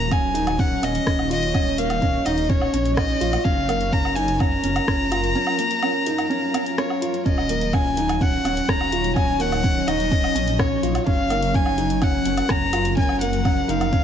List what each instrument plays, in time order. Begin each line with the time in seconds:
Already playing: detuned saw bass D#1, ambient pad F#3 D#4 C#5, violin A#5
0.11 felt piano C#4, violin G#5, kick, closed hi-hat, low woodblock
0.34 felt piano D#4, closed hi-hat
0.47 closed hi-hat, low woodblock
0.58 felt piano C#4, violin F#5, kick, closed hi-hat
0.82 detuned saw bass D#1, felt piano C#4, violin D#5, closed hi-hat, low woodblock
0.95 closed hi-hat
1.06 detuned saw bass D#1, felt piano C#4, kick, cross-stick, closed hi-hat
1.19 low woodblock
1.30 felt piano F4, violin D#5, closed hi-hat
1.43 closed hi-hat
1.54 felt piano C#4, kick, closed hi-hat, low woodblock
1.78 felt piano A#3, violin F5, closed hi-hat
1.90 closed hi-hat, low woodblock
2.02 felt piano C#4, kick, closed hi-hat
2.26 detuned saw bass D#1, felt piano D#4, violin D#5, closed hi-hat, low woodblock
2.38 closed hi-hat
2.49 felt piano C#4, violin C#5, kick, closed hi-hat
2.62 low woodblock
2.74 detuned saw bass A#1, felt piano C#4, closed hi-hat
2.86 closed hi-hat
2.97 felt piano C#4, violin D#5, kick, cross-stick, closed hi-hat, low woodblock
3.21 detuned saw bass A#1, felt piano F4, closed hi-hat
3.33 closed hi-hat, low woodblock
3.44 detuned saw bass F#1, ambient pad F#3 F4 A#4, felt piano C#4, violin F5, kick, closed hi-hat
3.68 felt piano A#3, closed hi-hat, low woodblock
3.81 closed hi-hat
3.92 felt piano C#4, violin A#5, kick, closed hi-hat
4.05 low woodblock
4.15 felt piano D#4, violin G#5, closed hi-hat
4.28 closed hi-hat
4.39 felt piano C#4, violin A#5, kick, closed hi-hat, low woodblock
4.63 detuned saw bass F#1, felt piano C#4, closed hi-hat
4.76 closed hi-hat, low woodblock
4.87 detuned saw bass F#1, felt piano C#4, kick, cross-stick, closed hi-hat
5.11 felt piano F4, closed hi-hat, low woodblock
5.24 closed hi-hat
5.35 felt piano C#4, closed hi-hat
5.47 low woodblock
5.59 felt piano A#3, closed hi-hat
5.71 closed hi-hat
5.83 felt piano C#4, closed hi-hat, low woodblock
6.07 felt piano D#4, closed hi-hat
6.18 closed hi-hat, low woodblock
6.30 felt piano C#4, closed hi-hat
6.54 felt piano C#4, closed hi-hat, low woodblock
6.66 closed hi-hat
6.78 felt piano C#4, violin C#5, cross-stick, closed hi-hat
6.90 low woodblock
7.02 felt piano F4, closed hi-hat
7.14 closed hi-hat
7.25 detuned saw bass D#1, felt piano C#4, ambient pad D#4 C#5, violin D#5, kick, closed hi-hat
7.38 low woodblock
7.49 felt piano A#3, closed hi-hat
7.61 closed hi-hat
7.73 felt piano C#4, violin G#5, kick, closed hi-hat, low woodblock
7.97 felt piano D#4, closed hi-hat
8.09 closed hi-hat, low woodblock
8.21 felt piano C#4, violin F#5, kick, closed hi-hat
8.45 detuned saw bass D#1, felt piano C#4, closed hi-hat, low woodblock
8.57 closed hi-hat
8.69 detuned saw bass D#1, felt piano C#4, violin A#5, kick, cross-stick, closed hi-hat
8.81 low woodblock
8.92 felt piano F4, closed hi-hat
9.04 closed hi-hat
9.16 felt piano C#4, violin G#5, kick, closed hi-hat, low woodblock
9.39 felt piano A#3, violin F#5, closed hi-hat
9.52 closed hi-hat, low woodblock
9.63 felt piano C#4, kick, closed hi-hat
9.87 detuned saw bass D#1, felt piano D#4, violin D#5, closed hi-hat, low woodblock
10.00 closed hi-hat
10.11 felt piano C#4, kick, closed hi-hat
10.24 low woodblock
10.35 detuned saw bass A#1, felt piano C#4, closed hi-hat
10.48 closed hi-hat
10.59 felt piano C#4, violin C#5, kick, cross-stick, closed hi-hat, low woodblock
10.83 detuned saw bass A#1, felt piano F4, closed hi-hat
10.95 closed hi-hat, low woodblock
11.06 detuned saw bass F#1, ambient pad F3 A#4, felt piano C#4, violin F5, kick, closed hi-hat
11.30 felt piano A#3, closed hi-hat, low woodblock
11.43 closed hi-hat
11.54 felt piano C#4, violin G#5, kick, closed hi-hat
11.66 low woodblock
11.78 felt piano D#4, closed hi-hat
11.90 closed hi-hat
12.02 felt piano C#4, violin F#5, kick, closed hi-hat, low woodblock
12.26 detuned saw bass F#1, felt piano C#4, closed hi-hat
12.37 closed hi-hat, low woodblock
12.49 detuned saw bass F#1, felt piano C#4, violin A#5, kick, cross-stick, closed hi-hat
12.73 felt piano F4, closed hi-hat, low woodblock
12.85 closed hi-hat
12.97 felt piano C#4, violin G#5, kick, closed hi-hat
13.09 low woodblock
13.21 felt piano A#3, violin F#5, closed hi-hat
13.33 closed hi-hat
13.45 felt piano C#4, kick, closed hi-hat, low woodblock
13.68 detuned saw bass F#1, felt piano D#4, violin F5, closed hi-hat
13.81 closed hi-hat, low woodblock
13.93 felt piano C#4, kick, closed hi-hat